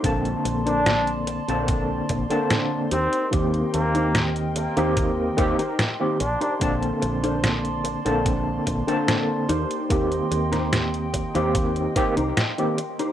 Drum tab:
HH |xxxxxxxxx-xxx-xx|xxxxxxxxx-xxx-xx|xxxxxxxxx-xxx-xx|xxxxxxxxxxxxxxxx|
SD |----o-------o---|----o-------o---|----o-------o---|---oo-------o---|
BD |o-------o-o-----|o-------o-o-----|o-------o-o-----|o-----o-o-o-----|